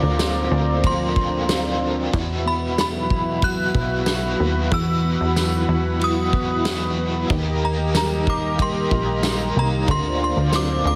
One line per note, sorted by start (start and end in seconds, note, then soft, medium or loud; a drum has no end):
0.00 0.49 D2 loud
0.00 0.82 D3 medium
0.00 2.13 D3 medium
0.00 0.83 A#3 medium
0.00 0.85 C4 medium
0.00 1.15 D4 medium
0.00 0.86 F4 medium
0.00 2.11 F4 medium
0.00 2.11 C5 medium
0.00 2.11 D5 medium
0.00 2.11 A#5 medium
0.00 0.89 D6 loud
0.19 1.48 C4 medium
0.19 snare loud
0.19 ride medium
0.19 tambourine medium
0.51 2.09 D2 loud
0.51 2.20 A#4 medium
0.83 1.47 D3 medium
0.83 2.20 F3 medium
0.83 1.48 A#3 medium
0.83 1.50 C4 medium
0.83 1.50 F4 medium
0.83 1.78 C6 medium
0.83 kick loud
0.83 ride medium
1.16 1.79 D4 medium
1.16 kick medium
1.48 2.13 D3 medium
1.48 2.14 A#3 medium
1.48 2.20 C4 medium
1.48 2.15 C4 medium
1.48 2.15 F4 medium
1.48 snare loud
1.48 ride medium
1.48 tambourine medium
1.81 2.20 D4 medium
2.11 3.42 E2 medium
2.11 3.71 E2 loud
2.11 3.42 B2 medium
2.11 3.40 E3 medium
2.11 3.42 B3 medium
2.11 7.26 F#4 medium
2.11 7.26 B4 medium
2.11 4.69 E5 medium
2.11 7.26 B5 medium
2.11 kick loud
2.11 ride medium
2.16 3.44 E4 medium
2.16 3.44 F#4 loud
2.46 3.74 B3 medium
2.46 2.79 B5 medium
2.78 3.41 F#3 medium
2.78 3.46 B5 medium
2.78 snare loud
2.78 ride medium
2.78 tambourine medium
3.10 5.68 E4 medium
3.10 kick medium
3.42 4.07 E3 medium
3.42 4.06 F#3 medium
3.42 4.07 B3 medium
3.42 4.08 E4 medium
3.42 4.09 F#4 medium
3.42 4.76 F#6 loud
3.42 kick loud
3.42 ride medium
3.74 4.36 B1 medium
3.74 4.38 B3 medium
3.74 kick medium
4.06 5.35 F#3 medium
4.06 4.72 B3 medium
4.06 4.73 E4 medium
4.06 4.73 F#4 medium
4.06 snare loud
4.06 ride medium
4.06 tambourine medium
4.39 4.70 D#2 medium
4.39 5.03 B3 medium
4.70 6.00 E2 medium
4.70 5.18 E2 loud
4.70 6.01 B2 medium
4.70 7.30 E3 medium
4.70 5.99 E3 medium
4.70 6.00 B3 medium
4.70 7.27 F#5 medium
4.70 6.06 E6 loud
4.70 kick loud
4.70 ride medium
4.75 6.01 E4 medium
4.75 6.03 F#4 medium
5.04 6.32 B3 medium
5.21 5.66 E2 loud
5.36 5.99 F#3 medium
5.36 snare loud
5.36 ride medium
5.36 tambourine medium
5.68 7.26 E2 loud
5.68 7.37 E4 medium
6.00 6.64 E3 medium
6.00 6.64 F#3 medium
6.00 6.65 B3 medium
6.00 6.66 E4 medium
6.00 6.67 F#4 medium
6.00 ride medium
6.04 6.95 D#6 medium
6.33 6.97 B3 medium
6.33 kick medium
6.65 7.28 E3 medium
6.65 7.36 F#3 medium
6.65 7.31 B3 medium
6.65 7.31 E4 medium
6.65 snare loud
6.65 ride medium
6.65 tambourine medium
6.69 7.32 F#4 medium
6.98 7.37 B3 medium
7.29 8.87 D#2 loud
7.29 8.57 D#3 medium
7.29 9.88 D#3 medium
7.29 8.59 A#3 medium
7.29 9.85 G4 medium
7.29 9.85 A#4 medium
7.29 9.86 D#5 medium
7.29 10.95 A#5 medium
7.29 kick loud
7.29 ride medium
7.33 8.59 D#4 medium
7.33 8.61 G4 loud
7.64 8.90 A#3 medium
7.64 7.96 A#5 medium
7.95 8.58 G3 medium
7.95 8.29 A#5 medium
7.95 snare loud
7.95 ride medium
7.95 tambourine medium
8.27 9.95 D#4 medium
8.27 8.61 D6 medium
8.27 kick medium
8.58 9.22 D#3 medium
8.58 9.22 G3 medium
8.58 9.23 A#3 medium
8.58 9.24 D#4 medium
8.58 kick loud
8.58 ride medium
8.62 9.25 G4 medium
8.62 9.60 C6 medium
8.91 9.53 A#1 loud
8.91 9.55 A#3 medium
8.91 kick loud
9.23 9.86 D#3 medium
9.23 9.94 G3 medium
9.23 9.87 A#3 medium
9.23 9.88 D#4 medium
9.23 9.89 G4 medium
9.23 snare loud
9.23 ride medium
9.23 tambourine medium
9.56 9.87 C2 loud
9.56 9.95 A#3 medium
9.56 9.90 A#5 medium
9.86 10.34 D2 loud
9.86 10.84 D3 medium
9.86 10.95 D3 medium
9.86 10.85 A#3 medium
9.86 10.84 C4 medium
9.86 10.95 F4 medium
9.86 10.82 F4 medium
9.86 10.95 C5 medium
9.86 10.95 D5 medium
9.86 kick loud
9.86 ride medium
9.91 10.23 C6 loud
10.20 10.95 D4 medium
10.20 10.55 C6 medium
10.37 10.82 D2 medium
10.53 10.95 C4 medium
10.53 10.86 D6 loud
10.53 snare loud
10.53 ride medium
10.53 tambourine medium
10.83 10.95 D2 loud
10.83 10.95 A#3 soft
10.83 10.95 C4 soft
10.83 10.95 F4 medium
10.83 10.95 A#4 medium
10.87 10.95 D6 loud